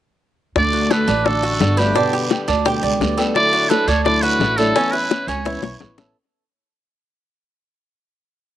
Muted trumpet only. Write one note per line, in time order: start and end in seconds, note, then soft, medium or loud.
0.57 0.93 D5 medium
0.91 1.27 B4 medium
1.25 1.80 A4 medium
1.78 2.13 G4 medium
3.35 3.71 D5 loud
3.70 3.89 B4 medium
3.88 4.04 C#5 loud
4.04 4.24 D5 medium
4.22 4.59 B4 medium
4.57 4.93 A4 medium
4.92 5.29 B4 medium
5.28 5.81 C#5 medium